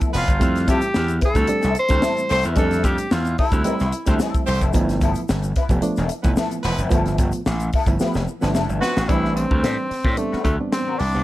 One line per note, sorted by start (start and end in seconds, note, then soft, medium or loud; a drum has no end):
0.00 0.12 F3 medium
0.00 0.22 F3 medium
0.00 0.22 A3 medium
0.00 0.12 B3 medium
0.00 0.22 B3 medium
0.00 0.13 E4 medium
0.00 0.22 E4 loud
0.00 0.13 A4 medium
0.00 kick loud
0.00 closed hi-hat soft
0.00 shaker medium
0.13 0.26 F1 loud
0.13 0.31 F3 loud
0.13 0.31 B3 loud
0.13 0.31 E4 loud
0.13 0.66 F4 medium
0.13 0.31 B4 loud
0.13 muted hollow-body jazz guitar stroke soft
0.13 open hi-hat medium
0.13 shaker medium
0.28 0.39 G1 medium
0.28 muted hollow-body jazz guitar stroke soft
0.28 kick medium
0.28 closed hi-hat medium
0.28 shaker medium
0.40 0.64 F2 medium
0.40 0.89 G3 loud
0.40 0.89 A3 medium
0.40 0.89 C4 medium
0.40 0.89 E4 loud
0.40 kick loud
0.40 closed hi-hat medium
0.40 shaker medium
0.55 snare soft
0.55 closed hi-hat soft
0.55 shaker medium
0.67 0.80 F2 loud
0.67 0.84 G3 medium
0.67 0.85 C4 loud
0.67 0.85 E4 medium
0.67 1.19 G4 loud
0.67 0.85 A4 loud
0.67 kick medium
0.67 closed hi-hat medium
0.67 shaker medium
0.81 closed hi-hat medium
0.81 shaker medium
0.94 1.18 E2 medium
0.94 muted hollow-body jazz guitar stroke soft
0.94 snare loud
0.94 shaker medium
1.08 1.15 C4 soft
1.08 1.15 G4 soft
1.08 closed hi-hat soft
1.08 shaker medium
1.21 1.35 G3 medium
1.21 1.34 C4 medium
1.21 1.34 E4 medium
1.21 1.34 B4 medium
1.21 kick loud
1.21 snare soft
1.21 closed hi-hat medium
1.25 1.74 A4 loud
1.34 1.47 D2 loud
1.34 1.44 G3 medium
1.34 1.45 A3 medium
1.34 1.45 C4 medium
1.34 1.45 E4 medium
1.34 muted hollow-body jazz guitar stroke soft
1.34 kick loud
1.34 closed hi-hat medium
1.34 shaker medium
1.47 1.69 G3 medium
1.47 1.68 A3 medium
1.47 1.69 C4 medium
1.47 1.69 D4 medium
1.47 muted hollow-body jazz guitar stroke soft
1.47 closed hi-hat medium
1.47 shaker medium
1.61 1.75 C2 loud
1.61 1.73 G3 medium
1.61 1.74 C4 medium
1.61 1.74 E4 medium
1.61 1.74 A4 medium
1.61 snare soft
1.61 closed hi-hat soft
1.61 shaker medium
1.74 1.82 C4 soft
1.74 1.83 E4 soft
1.74 muted hollow-body jazz guitar stroke soft
1.74 closed hi-hat medium
1.74 shaker medium
1.79 2.28 C5 loud
1.88 2.01 D2 medium
1.88 2.38 G3 medium
1.88 2.38 A3 medium
1.88 1.98 A3 medium
1.88 2.38 C4 medium
1.88 1.99 C4 medium
1.88 2.38 E4 medium
1.88 1.98 G4 medium
1.88 1.99 C5 medium
1.88 muted hollow-body jazz guitar stroke soft
1.88 kick loud
1.88 closed hi-hat medium
1.88 shaker medium
2.01 2.19 G3 medium
2.01 2.19 C4 medium
2.01 2.20 E4 medium
2.01 2.20 A4 medium
2.01 snare loud
2.01 shaker medium
2.17 closed hi-hat soft
2.17 shaker medium
2.29 2.43 C2 loud
2.29 2.47 A3 loud
2.29 2.47 C4 loud
2.29 2.47 G4 loud
2.29 2.47 C5 loud
2.29 2.44 C5 loud
2.29 muted hollow-body jazz guitar stroke soft
2.29 open hi-hat medium
2.29 shaker medium
2.43 2.57 E2 loud
2.43 2.55 G3 soft
2.43 2.55 C4 medium
2.43 2.55 E4 medium
2.43 2.56 B4 medium
2.43 closed hi-hat medium
2.43 shaker medium
2.56 2.80 F2 medium
2.56 2.67 F#3 medium
2.56 3.06 G3 loud
2.56 3.06 A3 medium
2.56 2.67 B3 medium
2.56 3.06 C4 medium
2.56 3.06 D4 loud
2.56 2.68 D#4 medium
2.56 2.68 G#4 medium
2.56 2.86 A4 loud
2.56 kick loud
2.56 closed hi-hat medium
2.56 shaker medium
2.67 2.82 G3 medium
2.67 2.82 C4 medium
2.67 2.82 E4 medium
2.67 2.82 A4 medium
2.71 snare soft
2.71 closed hi-hat soft
2.71 shaker medium
2.84 2.96 F2 loud
2.84 3.13 G4 medium
2.84 kick medium
2.84 closed hi-hat medium
2.84 shaker medium
2.98 muted hollow-body jazz guitar stroke soft
2.98 closed hi-hat soft
2.98 shaker medium
3.11 3.35 E2 loud
3.11 3.38 F4 medium
3.11 muted hollow-body jazz guitar stroke soft
3.11 snare loud
3.11 shaker medium
3.25 3.31 C4 soft
3.25 3.32 E4 soft
3.25 closed hi-hat soft
3.25 shaker medium
3.38 3.56 G3 medium
3.38 3.53 C4 medium
3.38 4.16 E4 medium
3.38 3.52 E4 medium
3.38 3.51 A4 loud
3.38 kick medium
3.38 open hi-hat medium
3.51 3.63 D2 medium
3.51 3.61 G3 medium
3.51 3.61 A3 medium
3.51 3.62 C4 medium
3.51 3.62 E4 medium
3.51 muted hollow-body jazz guitar stroke soft
3.51 kick loud
3.51 closed hi-hat medium
3.51 shaker medium
3.64 3.85 G3 medium
3.64 3.86 G3 medium
3.64 3.85 A3 medium
3.64 3.85 C4 medium
3.64 3.86 C4 medium
3.64 3.85 E4 medium
3.64 3.86 E4 medium
3.64 3.86 B4 medium
3.64 closed hi-hat medium
3.64 shaker medium
3.79 3.91 C2 loud
3.79 snare soft
3.79 closed hi-hat soft
3.79 shaker soft
3.92 3.99 C4 soft
3.92 3.99 E4 soft
3.92 muted hollow-body jazz guitar stroke soft
3.92 closed hi-hat medium
3.92 shaker medium
4.06 4.18 D2 medium
4.06 4.55 G3 medium
4.06 4.14 A3 medium
4.06 4.55 A3 medium
4.06 4.15 C4 medium
4.06 4.55 C4 medium
4.06 4.20 C4 medium
4.06 4.55 E4 loud
4.06 4.20 E4 medium
4.06 4.14 G4 medium
4.06 4.20 A4 medium
4.06 4.15 C5 medium
4.06 kick loud
4.06 closed hi-hat medium
4.06 shaker medium
4.10 4.20 G3 soft
4.20 4.41 G3 medium
4.20 4.41 C4 medium
4.20 4.41 E4 medium
4.20 4.42 A4 medium
4.20 snare loud
4.20 shaker medium
4.34 kick loud
4.34 closed hi-hat soft
4.34 shaker medium
4.46 4.60 C2 loud
4.46 4.64 A3 medium
4.46 4.64 C4 loud
4.46 4.64 G4 loud
4.46 4.64 C5 loud
4.46 muted hollow-body jazz guitar stroke soft
4.46 open hi-hat medium
4.46 shaker medium
4.61 4.72 F1 loud
4.61 4.74 G3 medium
4.61 4.74 C4 medium
4.61 4.74 E4 medium
4.61 4.74 A4 medium
4.61 kick medium
4.61 closed hi-hat soft
4.61 shaker medium
4.73 4.98 G1 loud
4.73 5.23 F3 loud
4.73 5.23 A3 loud
4.73 5.23 B3 loud
4.73 4.81 D#4 loud
4.73 kick loud
4.73 closed hi-hat medium
4.73 shaker medium
4.81 5.27 E4 loud
4.89 snare soft
4.89 closed hi-hat soft
4.89 shaker medium
5.01 5.14 G1 medium
5.01 5.19 F3 medium
5.01 5.19 B3 loud
5.01 5.19 E4 medium
5.01 5.20 A4 medium
5.01 kick medium
5.01 closed hi-hat medium
5.01 shaker medium
5.15 closed hi-hat medium
5.15 shaker medium
5.29 5.52 G1 medium
5.29 muted hollow-body jazz guitar stroke soft
5.29 snare loud
5.29 shaker medium
5.43 5.49 B3 soft
5.43 5.49 F4 soft
5.43 closed hi-hat soft
5.43 shaker medium
5.56 5.70 F3 medium
5.56 5.70 B3 medium
5.56 5.70 E4 medium
5.56 5.70 B4 medium
5.56 kick medium
5.56 snare soft
5.56 closed hi-hat medium
5.69 5.81 F1 loud
5.69 5.79 F3 loud
5.69 5.79 A3 medium
5.69 5.79 B3 medium
5.69 5.79 G4 loud
5.69 muted hollow-body jazz guitar stroke soft
5.69 kick medium
5.69 closed hi-hat medium
5.69 shaker medium
5.82 6.02 F3 medium
5.82 6.02 A3 medium
5.82 6.03 B3 medium
5.82 6.03 D4 loud
5.82 muted hollow-body jazz guitar stroke soft
5.82 closed hi-hat medium
5.82 shaker medium
5.96 6.08 E1 loud
5.96 6.10 F3 medium
5.96 6.10 B3 medium
5.96 6.10 E4 medium
5.96 6.11 A4 medium
5.96 snare soft
5.96 closed hi-hat soft
5.96 shaker medium
6.09 6.17 B3 soft
6.09 6.17 E4 soft
6.09 muted hollow-body jazz guitar stroke soft
6.09 closed hi-hat medium
6.09 shaker medium
6.22 6.35 F1 medium
6.22 6.31 F3 medium
6.22 6.72 F3 medium
6.22 6.72 A3 medium
6.22 6.31 B3 medium
6.22 6.72 B3 medium
6.22 6.31 E4 medium
6.22 6.72 E4 loud
6.22 6.31 B4 medium
6.22 muted hollow-body jazz guitar stroke soft
6.22 kick loud
6.22 closed hi-hat medium
6.22 shaker medium
6.37 6.54 F3 medium
6.37 6.54 B3 medium
6.37 6.55 E4 medium
6.37 6.55 A4 medium
6.37 snare loud
6.37 shaker loud
6.51 closed hi-hat soft
6.51 shaker medium
6.63 6.77 E1 loud
6.63 6.80 F3 loud
6.63 6.81 B3 loud
6.63 6.80 E4 loud
6.63 6.81 B4 loud
6.63 muted hollow-body jazz guitar stroke soft
6.63 open hi-hat medium
6.63 shaker medium
6.78 6.89 F1 loud
6.78 6.92 F3 soft
6.78 6.92 B3 medium
6.78 6.91 E4 medium
6.78 6.91 B4 medium
6.78 closed hi-hat soft
6.78 shaker medium
6.91 7.15 G1 loud
6.91 7.40 F3 loud
6.91 7.17 F3 medium
6.91 7.40 A3 loud
6.91 7.40 B3 loud
6.91 7.17 B3 medium
6.91 7.18 E4 medium
6.91 7.41 F4 loud
6.91 7.18 A4 medium
6.91 kick loud
6.91 closed hi-hat medium
6.91 shaker medium
7.06 snare soft
7.06 closed hi-hat soft
7.06 shaker medium
7.18 7.31 G1 loud
7.18 kick medium
7.18 closed hi-hat medium
7.18 shaker medium
7.32 muted hollow-body jazz guitar stroke soft
7.32 closed hi-hat medium
7.32 shaker medium
7.46 7.69 A1 loud
7.46 muted hollow-body jazz guitar stroke soft
7.46 snare loud
7.46 shaker medium
7.60 7.66 B3 soft
7.60 7.67 E4 soft
7.60 muted hollow-body jazz guitar stroke soft
7.60 closed hi-hat soft
7.60 shaker medium
7.73 7.90 F3 medium
7.73 7.88 B3 medium
7.73 7.88 E4 loud
7.73 7.87 A4 loud
7.73 kick medium
7.73 open hi-hat soft
7.86 7.98 G1 medium
7.86 7.96 F3 medium
7.86 7.96 A3 medium
7.86 7.96 B3 medium
7.86 7.96 E4 loud
7.86 muted hollow-body jazz guitar stroke soft
7.86 kick medium
7.86 closed hi-hat medium
7.86 shaker medium
8.00 8.20 F3 medium
8.00 8.17 F3 medium
8.00 8.20 A3 medium
8.00 8.20 B3 medium
8.00 8.17 B3 medium
8.00 8.17 E4 medium
8.00 8.20 G4 medium
8.00 8.18 B4 medium
8.00 snare medium
8.00 shaker medium
8.14 8.26 F1 loud
8.14 snare medium
8.14 shaker medium
8.27 8.34 B3 soft
8.27 8.35 E4 soft
8.27 muted hollow-body jazz guitar stroke soft
8.27 shaker medium
8.41 8.54 G1 medium
8.41 8.90 F3 medium
8.41 8.50 F3 medium
8.41 8.53 F3 soft
8.41 8.90 A3 medium
8.41 8.50 B3 medium
8.41 8.90 B3 medium
8.41 8.53 B3 medium
8.41 8.90 D4 medium
8.41 8.49 E4 medium
8.41 8.54 E4 medium
8.41 8.54 A4 medium
8.41 8.50 B4 medium
8.41 snare medium
8.41 shaker medium
8.54 8.67 F1 loud
8.54 8.79 F3 medium
8.54 8.79 B3 medium
8.54 8.80 E4 medium
8.54 8.80 A4 medium
8.54 snare loud
8.54 shaker medium
8.69 8.80 G1 medium
8.69 shaker medium
8.81 8.98 F3 medium
8.81 8.98 B3 loud
8.81 8.99 E4 loud
8.81 9.10 F#4 loud
8.81 8.98 B4 loud
8.81 muted hollow-body jazz guitar stroke soft
8.81 snare medium
8.81 shaker medium
8.97 9.07 A1 loud
8.97 muted hollow-body jazz guitar stroke soft
8.97 snare medium
8.97 shaker medium
9.08 9.45 A1 medium
9.08 9.87 G3 loud
9.08 9.34 C4 medium
9.08 9.87 C4 medium
9.08 9.34 D4 medium
9.08 9.87 D4 medium
9.08 9.35 E4 loud
9.08 9.34 G4 medium
9.08 9.87 B4 medium
9.08 9.35 B4 medium
9.08 kick loud
9.08 closed hi-hat medium
9.25 snare soft
9.36 10.19 C4 medium
9.36 closed hi-hat medium
9.51 9.62 D2 medium
9.51 muted hollow-body jazz guitar stroke soft
9.51 kick medium
9.63 9.76 A2 loud
9.63 9.80 C4 medium
9.63 9.80 D4 medium
9.63 9.80 G4 medium
9.63 9.81 C5 medium
9.63 snare loud
9.63 closed hi-hat medium
9.90 muted hollow-body jazz guitar stroke soft
9.90 muted slap bass stroke soft
9.90 snare soft
9.90 open hi-hat soft
10.04 10.16 A2 loud
10.04 10.15 C4 medium
10.04 10.15 D4 medium
10.04 10.16 G4 medium
10.04 10.16 C5 medium
10.04 kick loud
10.16 10.38 G3 medium
10.16 10.43 A3 medium
10.16 10.38 B3 medium
10.16 10.38 C4 medium
10.16 10.38 D4 medium
10.16 muted hollow-body jazz guitar stroke soft
10.16 closed hi-hat medium
10.32 10.44 C4 medium
10.32 10.44 D4 medium
10.32 10.44 G4 medium
10.32 10.46 C5 medium
10.32 muted slap bass stroke soft
10.32 snare soft
10.44 10.57 D2 medium
10.44 10.56 A3 medium
10.44 10.52 C4 soft
10.44 10.52 D4 soft
10.44 muted hollow-body jazz guitar stroke soft
10.44 kick medium
10.44 closed hi-hat medium
10.59 10.89 G3 medium
10.59 10.89 B3 medium
10.59 10.89 C4 medium
10.59 10.89 D4 medium
10.59 muted hollow-body jazz guitar stroke soft
10.72 11.00 C4 medium
10.72 muted hollow-body jazz guitar stroke soft
10.72 snare loud
10.72 closed hi-hat medium
10.87 10.99 C4 medium
10.87 10.99 D4 medium
10.87 10.99 G4 medium
10.87 11.00 B4 medium
10.99 11.12 C2 loud
10.99 11.07 C4 soft
10.99 11.23 D4 loud
10.99 11.07 D4 soft
10.99 muted hollow-body jazz guitar stroke soft
10.99 open hi-hat medium
11.14 11.23 C2 medium
11.14 11.23 G3 medium
11.14 11.23 B3 medium
11.14 11.23 C4 medium
11.14 11.23 D4 medium
11.14 muted hollow-body jazz guitar stroke medium